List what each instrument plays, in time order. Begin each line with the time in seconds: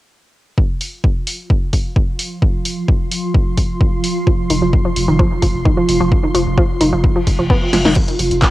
0.58 synth drone F3 F4, kick
0.81 open hi-hat
1.04 kick
1.27 open hi-hat
1.50 kick
1.73 kick, open hi-hat
1.96 kick
2.19 open hi-hat
2.42 kick
2.65 open hi-hat
2.88 kick
3.12 open hi-hat
3.35 kick
3.58 kick, open hi-hat
3.81 kick
4.04 open hi-hat
4.27 synth arpeggio sound F3, kick
4.50 sub bass F1, synth arpeggio sound D#3, open hi-hat
4.62 sub bass F1, synth arpeggio sound F3
4.73 kick
4.85 synth arpeggio sound F3
4.96 sub bass F1, open hi-hat
5.08 sub bass F1, synth arpeggio sound D#3
5.19 synth arpeggio sound F3, kick
5.42 sub bass F1, synth arpeggio sound F3, kick, open hi-hat
5.54 sub bass F1
5.65 synth arpeggio sound D#3, kick
5.77 synth arpeggio sound F3
5.88 sub bass F1, open hi-hat
6.00 sub bass F1, synth arpeggio sound F3
6.12 kick
6.23 synth arpeggio sound D#3
6.35 sub bass F1, synth arpeggio sound F3, open hi-hat
6.46 sub bass F1
6.58 synth arpeggio sound F3, kick
6.81 sub bass F1, synth arpeggio sound D#3, open hi-hat
6.93 sub bass F1, synth arpeggio sound F3
7.04 kick, reverse cymbal
7.16 synth arpeggio sound F3
7.27 sub bass F1, kick, open hi-hat
7.39 sub bass F1, synth arpeggio sound F3
7.50 synth arpeggio sound B3, kick
7.73 sub bass F1, synth arpeggio sound F3, snare, open hi-hat
7.85 sub bass F1, synth arpeggio sound D#3, snare
7.96 synth drone F3 F4, synth arpeggio sound F3, analog synth pad C4, kick, closed hi-hat, crash
8.08 closed hi-hat
8.19 sub bass F1, synth arpeggio sound F3, open hi-hat
8.31 sub bass F1, analog synth pad G#4, closed hi-hat
8.42 synth arpeggio sound D#3, kick, clap, closed hi-hat